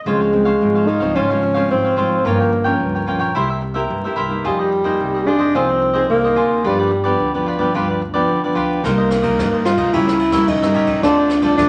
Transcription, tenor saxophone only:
0.06 G#3
0.87 D#4
1.15 C#4
1.71 C4
2.26 A#3
4.46 G3
5.27 D4
5.55 C4
6.09 A#3
6.65 G3
8.85 A#3
9.65 F4
9.93 E4
10.48 D#4
11.03 D4
11.57 D4

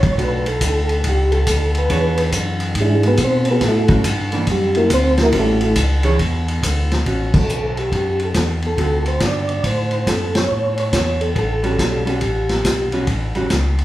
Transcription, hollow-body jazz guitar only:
0.18 A3 D4 F#4
1.90 E3 D4 G#4 C#5
3.89 G3 C#4 F#4
4.33 E3 A#3 D4
5.33 G3 C#4 F#4
6.04 E3 D4 G#4 C#5
7.07 C#4 F#4
8.77 D3 C4 F#4
11.63 G3 C#4 F#4
12.06 G3 C#4 F#4
12.93 G3 C#4 F#4
13.35 G3 C#4 F#4

